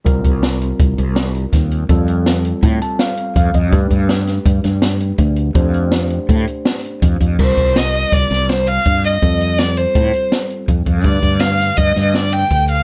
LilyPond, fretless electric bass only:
\new Staff \with { instrumentName = "Fretless electric bass" } { \clef bass \time 5/4 \key c \dorian \tempo 4 = 164 c,8 c,4. c,8 c,4. ees,4 | f,2 a,8 r4. f,8 f,8 | g,8 g,4. g,8 g,4. d,4 | f,2 a,8 r4. f,8 f,8 |
c,8 c,4. c,8 c,4. g,4 | f,2 a,8 r4. f,8 f,8 | g,8 g,4. g,8 g,4. d,4 | }